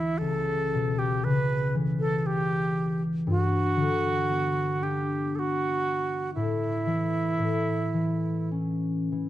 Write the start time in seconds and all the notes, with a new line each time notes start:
Already playing: D2 D3 E3 E4
0.18 C#2 A4
0.74 B2
0.99 G4
1.24 C#3 B4
1.75 E3
2.00 A4
2.18 A4
2.26 G4
3.27 G2 F#4
3.77 D3
4.30 B3
4.82 D4 G4
5.36 F#4 A4
6.34 A2 E4
6.86 E3
7.38 A2
7.94 E3
8.51 C#4
9.12 E3